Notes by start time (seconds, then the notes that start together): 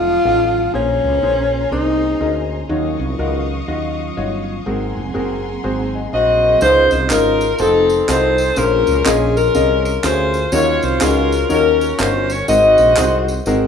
Already playing: F1 D#3 F#3 A3 F4 F5 F#5 A5 D#6
0.25 A1 D#4 F4 F#4 A4
0.73 A#1 A#2 A#3 C#4 G#4 A#4 C5 G#5 A#5 C6
1.04 C#2
1.23 A#1 C#4 G#4 A#4 C5
1.72 C2 C#4 D#4 G#4 A#4 C5
2.20 D2 C#4 G#4 A#4 D#5
2.69 D#2 D#3 F#3 C#4 D#4 F4 F#4 C#5 D#5 F5 C#6 D#6
2.99 C2
3.19 C#2 D#4 F4 F#4 A#4
3.68 D#2 D#4 F4 F#4 D#5
4.17 G1 D#4 F4 F#4 C#5
4.66 G#1 G#2 F#3 A#3 C4 F#4 G#4 A#4 F#5 G#5 A#5 C6
4.97 F1
5.14 F#1 C4 F#4 G#4 A#4
5.64 G#1 C4 F#4 G#4 C5
5.94 D#5 G#5
6.13 A#1 F#4 C5 D#5 F5
6.43 A#4 D#5
6.61 C#2 C#3 C#4 D#4 F4 G#4 C5, tambourine
6.91 C2 C5, tambourine
7.10 G#1 C#4 D#4 F4 G#4 A#4, clap, tambourine
7.41 tambourine
7.58 F1 C4 D#4 F4 F#4 A4 C5, tambourine
7.90 tambourine
8.08 C2 D#4 F4 F#4 A4 C5, clap, tambourine
8.38 tambourine
8.56 A#1 A#2 C#4 F4 G#4 A#4 C5, tambourine
8.87 C#2, tambourine
9.05 A#1 C#4 F4 G#4 A#4 D#5, clap, tambourine
9.37 C#4 F4 A#4, tambourine
9.55 C2 C#4 F4 G#4 A#4 D#5, tambourine
9.85 A#4, tambourine
10.03 D2 C#4 F4 G#4 A#4 C5 C#5, clap, tambourine
10.34 tambourine
10.52 D#2 D#3 C#4 D#4 F4 F#4 A#4 C#5, tambourine
10.82 C2 C5, tambourine
11.01 C#2 C#4 D#4 F4 F#4 G#4 A#4, clap, tambourine
11.32 tambourine
11.49 D#2 C#4 D#4 F4 F#4 A#4 C#5, tambourine
11.81 tambourine
11.99 G1 C#4 D#4 F4 F#4 A#4 C5, clap, tambourine
12.30 C#5, tambourine
12.48 G#1 G#2 C4 D#4 F#4 G#4 A#4 C5 D#5, tambourine
12.78 A#1, tambourine
12.96 C2 C4 D#4 F#4 G#4 C5, clap, tambourine
13.28 tambourine
13.46 G#1 C4 D#4 F#4 G#4 A#4, tambourine